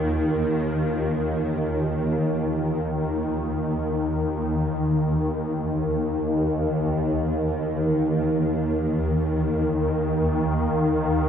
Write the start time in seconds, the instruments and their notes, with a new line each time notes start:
Already playing: synth drone D#2 D#3, analog synth pad D#3 A#3 F4 A#4
4.80 synth drone D#2 D#3, analog synth pad D#4
9.15 analog synth pad F5